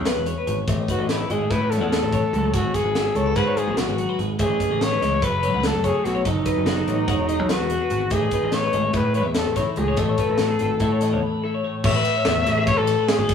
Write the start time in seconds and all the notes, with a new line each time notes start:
Already playing: B1 E3 G#4 C#5
0.05 B3 B4, snare, closed hi-hat
0.16 E1
0.26 G#4 C#5, closed hi-hat
0.38 B4
0.47 G#1 C#5, closed hi-hat
0.68 A1 A2 C#5 E5, kick, closed hi-hat
0.79 D#5
0.88 D#4 F#4 B4, kick, closed hi-hat
0.99 A1 D#5
1.09 A3 E4, snare, closed hi-hat
1.21 B4
1.30 G#1 E4 G#4 D#5, closed hi-hat
1.42 E5
1.51 A2 E4 B4, kick, closed hi-hat
1.61 B4
1.70 E3 A4 C#5, snare, closed hi-hat
1.81 E2 F#5
1.91 D#3 A4, snare, closed hi-hat
2.03 A1
2.12 E3 C#5, kick, closed hi-hat
2.23 A4
2.33 C#2 F#3, closed hi-hat
2.44 C#5
2.54 G#1 G#3 E4 F#4 D#5, kick, closed hi-hat
2.65 C#5
2.74 F#4 G#4 B4, kick, snare, closed hi-hat
2.84 G#1
2.95 E4 F#4, snare, closed hi-hat
3.06 A4
3.15 C#2 E4 A4 C#5, closed hi-hat
3.26 F#4 B4
3.36 G#2 F#4 B4 F#5, kick, snare, closed hi-hat
3.47 C#5
3.57 G#3 G#4 D#5, closed hi-hat
3.67 B1 C#5
3.77 E3 F#4 B4, snare, closed hi-hat
3.88 G#1
3.98 F#3 G#4, closed hi-hat
4.09 B4
4.19 G#1 G#3, closed hi-hat
4.38 A1 A2 A3 C#4 G#4 E5, kick, closed hi-hat
4.50 D#5
4.59 C#3 B4, kick, closed hi-hat
4.71 A1 D#5
4.80 D#3 C#5, snare, closed hi-hat
4.91 B4
5.01 C#2 E3 D#5, snare, closed hi-hat
5.12 E5
5.22 F#1 F#3 A4 B4, kick, closed hi-hat
5.32 B4
5.43 E4 C#5, closed hi-hat
5.53 C#2 F#5
5.63 A3 A4, snare, closed hi-hat
5.75 F#1
5.84 F#4 G#4 C#5, kick, closed hi-hat
5.94 A4
6.05 B1 E4 F#4, snare, closed hi-hat
6.15 C#5
6.25 F#1 F#3 D#4 A4 D#5, kick, closed hi-hat
6.36 C#5
6.46 D#4 B4, kick, closed hi-hat
6.57 F#1
6.66 B3 F#4, snare, closed hi-hat
6.77 A4
6.87 A1 F#4 C#5, closed hi-hat
6.97 B4
7.07 E1 E3 C#5 F#5, kick, closed hi-hat
7.18 C#5
7.28 G#4 D#5, closed hi-hat
7.39 B1 C#5
7.49 B3 F#4 B4, snare, closed hi-hat
7.60 E1
7.70 B3 G#4, closed hi-hat
7.81 B4
7.90 G#1 B3, closed hi-hat
8.10 A1 A2 D#4 G#4 E5, kick, closed hi-hat
8.22 D#5
8.31 D#4 B4, kick, closed hi-hat
8.43 A1 D#5
8.52 A3 C#5, snare, closed hi-hat
8.64 B4
8.73 G#1 G#4 D#5, closed hi-hat
8.84 E5
8.93 A2 G#4 B4, kick, closed hi-hat
9.05 B4
9.14 E3 B4 C#5, closed hi-hat
9.25 E2 E5
9.34 A4, snare, closed hi-hat
9.46 A1
9.56 D#4 E4 C#5, kick, snare, closed hi-hat
9.67 A4
9.76 C#2 A2 D#4 G#4, closed hi-hat
9.88 C#5
9.97 A1 A2 E4 A4 D#5, kick, closed hi-hat
10.09 C#5
10.18 E4 B4, kick, closed hi-hat
10.30 A1
10.38 A3 F#4, snare, closed hi-hat
10.51 G#4
10.59 G#1 E4 B4, closed hi-hat
10.71 A4
10.80 A2 E4 E5, kick, closed hi-hat
10.92 C#5
11.01 E3 D#5, snare, closed hi-hat
11.13 E2 C#5
11.23 B4
11.44 E4 A4
11.54 C#5
11.64 A2 C#5
11.84 A1 C#5 E5, kick, crash
11.96 B4
12.05 ride
12.16 C#5
12.25 E2 E5, snare, ride
12.37 C#5
12.46 A1, snare, ride
12.57 G#4
12.66 C#5, kick, snare, ride
12.77 A1 A4
12.87 ride
12.99 B4
13.08 G#4 C#5, snare, ride
13.18 G#1 A4
13.29 kick, snare, ride